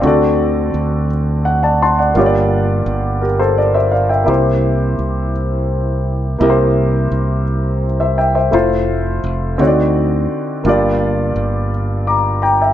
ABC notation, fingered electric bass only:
X:1
M:6/8
L:1/8
Q:3/8=57
K:Cmix
V:1 name="Fingered electric bass" clef=bass
D,,2 D,,4 | G,,,2 G,,,4 | C,,2 C,,4 | C,,2 C,,4 |
F,,,2 F,,, D,,2 z | G,,,2 G,,,4 |]